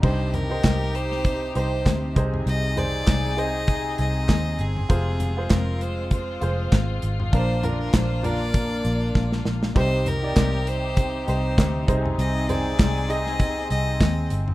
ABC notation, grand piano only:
X:1
M:4/4
L:1/16
Q:"Swing 16ths" 1/4=99
K:Cm
V:1 name="Grand piano"
[EGc]2 z [EGc]6 z [EGc]4 [EAc]2- | [EAc] z [EAc]3 z [EAc]6 z4 | [FAc]2 z [FAc]6 z [FAc]4- [FAc] z | [DFB]2 [DFB]3 z [DFB]6 z4 |
[EGc]2 z [EGd]6 z [EGc]4 [EAc]2- | [EAc] z [EAc]3 z [EAe]6 z4 |]
V:2 name="Grand piano" clef=bass
G,,6 z8 C,2- | C,4 z12 | C,6 z8 z2 | [B,,F,]6 z8 z2 |
[C,G,]6 z8 [C,C]2- | [C,C]4 z12 |]